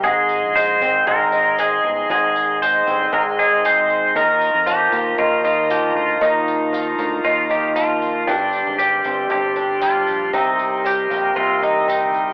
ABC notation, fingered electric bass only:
X:1
M:4/4
L:1/16
Q:1/4=116
K:Ablyd
V:1 name="Fingered electric bass" clef=bass
A,,,3 B,,,3 A,,,2 A,,,6 G,,,2 | A,,,6 G,,,2 A,,,8 | E,,3 F,,3 E,,2 E,,6 D,,2 | E,,6 D,,2 E,,8 |
G,,,3 A,,,3 G,,,2 G,,,6 B,,,2 | C,,6 B,,,2 C,,8 |]